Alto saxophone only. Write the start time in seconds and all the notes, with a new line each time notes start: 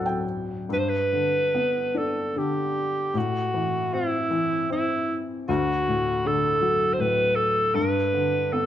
Already playing: A4
0.73 B4
0.78 C5
0.89 B4
1.98 A4
2.38 G4
3.17 F#4
3.94 E4
4.72 E4
5.49 F#4
6.27 A4
6.93 C5
7.00 B4
7.36 A4
7.75 B4
8.53 A4